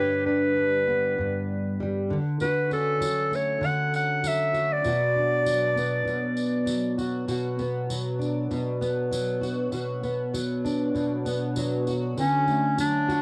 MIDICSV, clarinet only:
0, 0, Header, 1, 2, 480
1, 0, Start_track
1, 0, Tempo, 610376
1, 1894, Time_signature, 4, 2, 24, 8
1, 10395, End_track
2, 0, Start_track
2, 0, Title_t, "Clarinet"
2, 0, Program_c, 0, 71
2, 0, Note_on_c, 0, 71, 86
2, 184, Note_off_c, 0, 71, 0
2, 206, Note_on_c, 0, 71, 88
2, 1139, Note_off_c, 0, 71, 0
2, 1901, Note_on_c, 0, 71, 91
2, 2121, Note_off_c, 0, 71, 0
2, 2146, Note_on_c, 0, 69, 83
2, 2636, Note_on_c, 0, 73, 81
2, 2648, Note_off_c, 0, 69, 0
2, 2874, Note_on_c, 0, 78, 91
2, 2886, Note_off_c, 0, 73, 0
2, 3105, Note_off_c, 0, 78, 0
2, 3113, Note_on_c, 0, 78, 82
2, 3362, Note_on_c, 0, 76, 93
2, 3374, Note_off_c, 0, 78, 0
2, 3717, Note_on_c, 0, 74, 92
2, 3729, Note_off_c, 0, 76, 0
2, 5507, Note_off_c, 0, 74, 0
2, 9588, Note_on_c, 0, 61, 94
2, 10029, Note_off_c, 0, 61, 0
2, 10066, Note_on_c, 0, 62, 90
2, 10395, Note_off_c, 0, 62, 0
2, 10395, End_track
0, 0, End_of_file